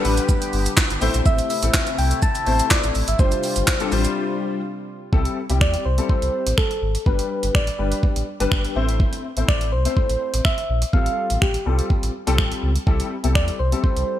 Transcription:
Already playing: analog synth pad D3 B3 G4, soft synth lead B4
0.04 sub bass A1, grand piano G3 B3 D4 B4, open hi-hat, shaker
0.17 closed hi-hat, shaker
0.29 kick, shaker
0.42 closed hi-hat, shaker
0.53 sub bass G1, open hi-hat, shaker
0.66 closed hi-hat, shaker
0.77 kick, snare, clap, shaker
0.90 sub bass G1, closed hi-hat, shaker
1.01 sub bass A1, analog synth pad C3 A3 E4, grand piano A3 C4 E4 C5, open hi-hat, shaker
1.14 sub bass A#1, closed hi-hat, shaker
1.26 sub bass A1, soft synth lead E5, kick, shaker
1.39 closed hi-hat, shaker
1.50 soft synth lead E5, open hi-hat, shaker
1.62 sub bass A1, grand piano A3 C4 E4 A4, closed hi-hat, shaker
1.74 kick, snare, clap, shaker
1.87 closed hi-hat, shaker
1.98 sub bass C2, soft synth lead G5, open hi-hat, shaker
2.11 closed hi-hat, shaker
2.22 soft synth lead A5, kick, shaker
2.35 closed hi-hat, shaker
2.46 sub bass A1, grand piano A3 C4 E4 C5, open hi-hat, shaker
2.60 closed hi-hat, shaker
2.71 soft synth lead D5, kick, snare, clap, shaker
2.84 sub bass A1, closed hi-hat, shaker
2.95 sub bass A1, open hi-hat, shaker
3.08 sub bass G#1, soft synth lead E5, closed hi-hat, shaker
3.19 sub bass G1, analog synth pad C3 G3 F4, grand piano G3 D4 F4 C5, soft synth lead C5, kick, shaker
3.32 closed hi-hat, shaker
3.44 open hi-hat, shaker
3.56 sub bass G1, closed hi-hat, shaker
3.67 kick, snare, clap, shaker
3.80 grand piano G3 D4 F4 A4, closed hi-hat, shaker
3.91 sub bass A1, grand piano G3 D4 F4 C5, open hi-hat, shaker
4.05 closed hi-hat, shaker
5.12 sub bass C2, grand piano G3 C4 E4 A4, kick
5.25 closed hi-hat
5.50 sub bass C2, grand piano G3 C4 E4 G4, closed hi-hat
5.61 sub bass E2, soft synth lead D5, finger snap, kick
5.74 closed hi-hat
5.85 sub bass C2, soft synth lead C5
5.98 grand piano G3 C4 E4 A4, closed hi-hat
6.09 soft synth lead C5, kick
6.22 sub bass C2, closed hi-hat
6.46 sub bass A1, closed hi-hat
6.58 soft synth lead A4, finger snap, kick
6.71 closed hi-hat
6.82 sub bass G#1
6.95 closed hi-hat
7.06 sub bass G1, grand piano G3 B3 D4 B4, soft synth lead B4, kick
7.19 closed hi-hat
7.43 sub bass G1, closed hi-hat
7.55 sub bass A1, soft synth lead D5, finger snap, kick
7.67 closed hi-hat
7.79 sub bass G1, grand piano G3 B3 D4 B4
7.92 closed hi-hat
8.03 kick
8.16 sub bass A1, closed hi-hat
8.40 sub bass G1, grand piano G3 B3 D4 B4, closed hi-hat
8.52 sub bass G1, finger snap, kick
8.65 closed hi-hat
8.76 sub bass A1, grand piano A3 C4 E4 C5
8.89 closed hi-hat
9.00 kick
9.13 closed hi-hat
9.37 sub bass A1, grand piano A3 C4 E4 C5, closed hi-hat
9.48 sub bass A1, soft synth lead D5, finger snap, kick
9.61 closed hi-hat
9.72 sub bass C2, soft synth lead C5
9.85 grand piano A3 C4 E4 C5, closed hi-hat
9.97 soft synth lead C5, kick
10.09 sub bass A1, closed hi-hat
10.34 sub bass A1, closed hi-hat
10.45 soft synth lead E5, finger snap, kick
10.58 closed hi-hat
10.69 sub bass A#1
10.82 closed hi-hat
10.93 sub bass A1, grand piano G3 C4 F4 A4, soft synth lead F5, kick
11.06 closed hi-hat
11.30 sub bass A1, closed hi-hat
11.42 sub bass A1, soft synth lead G4, finger snap, kick
11.54 closed hi-hat
11.66 sub bass C2, grand piano G3 C4 F4 A4
11.79 closed hi-hat
11.90 kick
12.03 sub bass A1, closed hi-hat
12.27 sub bass C2, grand piano G3 C4 F4 A4, closed hi-hat
12.38 sub bass A1, finger snap, kick
12.52 closed hi-hat
12.63 sub bass C#2
12.76 closed hi-hat
12.87 sub bass C2, grand piano G3 C4 E4 A4, kick
13.00 closed hi-hat
13.23 sub bass C2, grand piano G3 C4 E4 A4, closed hi-hat
13.35 sub bass E2, soft synth lead D5, finger snap, kick
13.48 closed hi-hat
13.59 sub bass C2, soft synth lead C5
13.72 grand piano G3 C4 E4 A4, closed hi-hat
13.84 soft synth lead C5, kick
13.96 sub bass C2, closed hi-hat

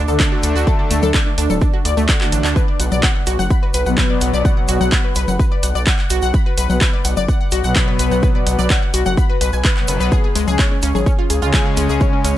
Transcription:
0.08 analog synth bass D2, analog synth pad D3 A3 D4, synth pluck A4, shaker
0.20 synth pluck D4, kick, clap, shaker
0.32 synth pluck F#4
0.43 analog synth bass D2, synth pluck A4, closed hi-hat, shaker
0.55 analog synth bass D2, synth pluck F#4, shaker
0.67 synth pluck A4, kick, shaker
0.79 synth pluck A4
0.91 analog synth bass D2, synth pluck A3, closed hi-hat, shaker
1.02 analog synth bass D2, analog synth pad D3 A3 D4, synth pluck A4, low conga, shaker
1.14 synth pluck D5, kick, clap, shaker
1.26 synth pluck D4
1.38 analog synth bass D2, synth pluck D4, closed hi-hat, shaker
1.50 analog synth bass D1, synth pluck A4, low conga, shaker
1.61 synth pluck D4, kick, shaker
1.74 synth pluck F#4
1.85 analog synth bass D2, synth pluck D5, closed hi-hat, shaker
1.97 analog synth bass D2, synth pluck A3, shaker
2.09 synth pluck F#5, kick, clap, shaker
2.21 analog synth pad D3 A3 D4, synth pluck F#4, clap
2.32 analog synth bass A1, synth pluck D4, closed hi-hat, shaker
2.44 analog synth bass D2, synth pluck D4, clap, shaker
2.56 synth pluck B4, kick, shaker
2.68 synth pluck D5
2.80 analog synth bass B1, synth pluck F#5, closed hi-hat, shaker
2.92 analog synth bass B1, analog synth pad B2 F#3 B3, synth pluck D5, low conga, shaker
3.03 synth pluck F#5, kick, clap, shaker
3.15 synth pluck F#5
3.26 analog synth bass B1, synth pluck F#4, closed hi-hat, shaker
3.39 analog synth bass F#1, synth pluck F#5, low conga, shaker
3.50 synth pluck B5, kick, shaker
3.63 synth pluck B4
3.74 analog synth bass B1, synth pluck B4, closed hi-hat, shaker
3.86 analog synth bass B1, analog synth pad B2 F#3 B3, synth pluck F#5, shaker
3.98 synth pluck B4, kick, clap, shaker
4.10 synth pluck D5
4.21 analog synth bass B1, synth pluck F#5, closed hi-hat, shaker
4.33 analog synth bass B1, synth pluck D5, shaker
4.45 synth pluck F#5, kick, shaker
4.57 synth pluck F#5
4.68 analog synth bass B1, synth pluck F#4, closed hi-hat, shaker
4.81 analog synth bass B1, analog synth pad B2 F#3 B3, synth pluck F#5, low conga, shaker
4.92 synth pluck B5, kick, clap, shaker
5.04 synth pluck B4
5.15 analog synth bass B1, synth pluck B4, closed hi-hat, shaker
5.28 analog synth bass F#1, synth pluck F#5, low conga, shaker
5.39 synth pluck B4, kick, shaker
5.52 synth pluck D5
5.63 analog synth bass B1, synth pluck F#5, closed hi-hat, shaker
5.75 analog synth bass B1, synth pluck D5, shaker
5.87 synth pluck F#5, kick, clap, shaker
5.99 synth pluck F#5, clap
6.10 analog synth bass B1, synth pluck F#4, closed hi-hat, shaker
6.22 analog synth bass B1, synth pluck F#5, shaker
6.34 synth pluck B5, kick, shaker
6.46 synth pluck B4
6.58 analog synth bass B1, synth pluck B4, closed hi-hat, shaker
6.70 analog synth bass B1, analog synth pad B2 F#3 B3, synth pluck F#5, low conga, shaker
6.81 synth pluck B4, kick, clap, shaker
6.93 synth pluck D5
7.05 analog synth bass B1, synth pluck F#5, closed hi-hat, shaker
7.17 analog synth bass F#1, synth pluck D5, low conga, shaker
7.28 synth pluck F#5, kick, shaker
7.41 synth pluck F#5
7.51 analog synth bass B1, synth pluck F#4, closed hi-hat, shaker
7.64 analog synth bass B1, analog synth pad B2 F#3 B3, synth pluck F#5, shaker
7.76 synth pluck B5, kick, clap, shaker
7.88 synth pluck B4
7.99 analog synth bass B1, synth pluck B4, closed hi-hat, shaker
8.11 analog synth bass B1, synth pluck F#5, shaker
8.23 synth pluck B4, kick, shaker
8.35 synth pluck D5
8.46 analog synth bass B1, synth pluck F#5, closed hi-hat, shaker
8.59 analog synth bass B1, analog synth pad B2 F#3 B3, synth pluck D5, low conga, shaker
8.70 synth pluck F#5, kick, clap, shaker
8.82 synth pluck F#5
8.94 analog synth bass B1, synth pluck F#4, closed hi-hat, shaker
9.06 analog synth bass F#1, synth pluck F#5, low conga, shaker
9.17 synth pluck B5, kick, shaker
9.30 synth pluck B4
9.41 analog synth bass B1, synth pluck B4, closed hi-hat, shaker
9.53 analog synth bass B1, synth pluck G#5, shaker
9.64 synth pluck B4, kick, clap, shaker
9.77 analog synth pad B2 F#3 B3, synth pluck F#5, clap
9.88 analog synth bass F#1, synth pluck B4, closed hi-hat, shaker
10.00 analog synth bass B1, synth pluck B4, shaker
10.12 synth pluck G#4, kick, shaker
10.24 synth pluck G#4
10.35 analog synth bass C#2, synth pluck G#3, closed hi-hat, shaker
10.48 analog synth bass C#2, analog synth pad C#3 G#3 C#4, synth pluck G#4, low conga, shaker
10.59 synth pluck C#5, kick, clap, shaker
10.71 synth pluck C#4
10.82 analog synth bass C#2, synth pluck C#4, closed hi-hat, shaker
10.95 analog synth bass G#1, synth pluck G#4, low conga, shaker
11.06 synth pluck C#4, kick, shaker
11.19 synth pluck F4
11.30 analog synth bass C#2, synth pluck G#4, closed hi-hat, shaker
11.42 analog synth bass C#2, analog synth pad C#3 G#3 C#4, synth pluck F4, shaker
11.53 synth pluck G#4, kick, clap, shaker
11.66 synth pluck G#4
11.77 analog synth bass C#2, synth pluck G#3, closed hi-hat, shaker
11.89 analog synth bass C#2, synth pluck G#4, shaker
12.00 synth pluck C#5, kick, shaker
12.13 synth pluck C#4
12.24 analog synth bass C#2, synth pluck C#4, closed hi-hat, shaker

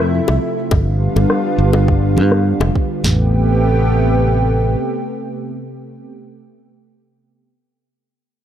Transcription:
Already playing: fingered electric bass F2, analog synth pad C3 F3 A3 E4
0.00 cabasa
0.14 cabasa
0.28 fingered electric bass C2, high bongo
0.59 cabasa
0.71 fingered electric bass G1, analog synth pad D3 G3 B3 F4, kick, high bongo
0.88 cabasa
1.16 fingered electric bass G1, high bongo
1.30 cross-stick, cabasa
1.45 cabasa
1.58 fingered electric bass G1
1.73 high bongo
1.88 kick
2.16 fingered electric bass G2, high bongo
2.32 cross-stick
2.46 cabasa
2.60 fingered electric bass F1, high bongo
2.76 kick
2.91 cabasa
3.04 fingered electric bass A1, analog synth pad C3 A3 B3 G4, snare, floor tom

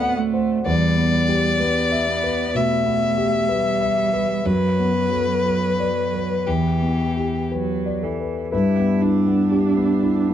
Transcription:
Already playing: grand piano A2 C4 A4 C5 D5 F#5, cello B3, violin F#5
0.02 grand piano F#5
0.17 cello A3
0.34 grand piano C5
0.66 grand piano E2, cello G3, violin D5
0.97 grand piano B3
1.28 grand piano G4
1.60 cello B3, grand piano B4
1.92 grand piano E5
2.08 cello B3
2.23 grand piano B4
2.55 grand piano B2, cello A3, violin E5
2.86 grand piano B3
3.18 grand piano G4
3.49 cello G3, grand piano B4
3.81 grand piano E5
4.13 grand piano B4
4.46 grand piano F#2, cello F#3, violin B4
4.79 grand piano B3
5.12 grand piano A4
5.46 grand piano B4
5.80 grand piano D5
6.14 grand piano B4
6.46 grand piano E2, cello E3, violin G4
6.82 grand piano B3
7.17 grand piano G4
7.51 cello F#3, grand piano B4
7.86 grand piano D5
8.02 cello E3, grand piano A4
8.20 grand piano B4
8.52 grand piano G2 B4, harmonium D4 G4 E5, cello E4
8.78 grand piano B3
9.02 cello D4, grand piano E4
9.26 grand piano B3
9.51 grand piano G4
9.77 grand piano B3
10.03 grand piano E4
10.29 grand piano B3

